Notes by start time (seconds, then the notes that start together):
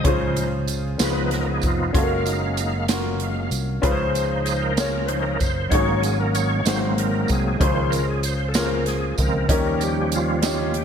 0.04 C#2 C#3 F3 C#4 D#4 F4 G#4 C5, kick, closed hi-hat
0.36 closed hi-hat, tambourine
0.68 closed hi-hat, tambourine
0.98 C#2 C#3 F3 B3 C#4 F4 G#4 B4, snare, closed hi-hat, tambourine
1.02 D#4 B4
1.31 snare, closed hi-hat
1.35 A#4
1.44 A#4
1.50 G#4
1.62 F1, kick, closed hi-hat, tambourine
1.67 F4
1.93 F#1 G#3 C#4 F4 F#4 A4, kick, closed hi-hat
1.98 A#3 F5
2.03 A#4
2.26 D#4, closed hi-hat, tambourine
2.47 C#4
2.57 D#4, closed hi-hat, tambourine
2.88 C#4 F4 F#4 A#4, snare, closed hi-hat, tambourine
3.20 G#3 A#3 F5, closed hi-hat
3.51 C2, closed hi-hat, tambourine
3.82 C#2 C#3 F3 C#4 D#4 F4 G#4 B4 C5, kick, closed hi-hat
3.91 C5
4.15 closed hi-hat, tambourine
4.45 G#4, closed hi-hat, tambourine
4.63 A#4
4.77 C#4 F4 G#4 C#5, snare, closed hi-hat, tambourine
5.06 F3 C#4 D#4 B4 C5, closed hi-hat
5.23 A#4
5.39 F#1 C5, kick, closed hi-hat, tambourine
5.69 G#1 G#2 F#3 A#3 C#4 D#4 F#4 C#5, kick, closed hi-hat
5.74 G#4 C#5
6.01 G#4, closed hi-hat, tambourine
6.20 A#4
6.35 C#5, closed hi-hat, tambourine
6.65 G#1 G#2 F#3 A#3 C4 D#4 F#4 G#4 C5, snare, closed hi-hat, tambourine
6.98 A#4, closed hi-hat
7.28 C2 G#4, kick, closed hi-hat, tambourine
7.59 C#2 C#3 D#3 F3 C#4 F4 G#4 C5, kick, closed hi-hat
7.63 C5
7.91 A#4, closed hi-hat, tambourine
8.09 G#4
8.23 C5, closed hi-hat, tambourine
8.48 A4
8.54 C#4 F4 G#4 A#4, snare, closed hi-hat, tambourine
8.58 A#4
8.64 C5
8.86 G#4, snare, closed hi-hat
9.18 C#2 D#3 F3 C4 A#4, kick, closed hi-hat, tambourine
9.48 D#2 D#3 F3 G3 C#4 D#4 G4 A#4, kick, closed hi-hat
9.81 G4, closed hi-hat, tambourine
10.12 closed hi-hat, tambourine
10.16 F4
10.42 C#4 D#4 G4 C#5, snare, closed hi-hat, tambourine
10.74 G4, closed hi-hat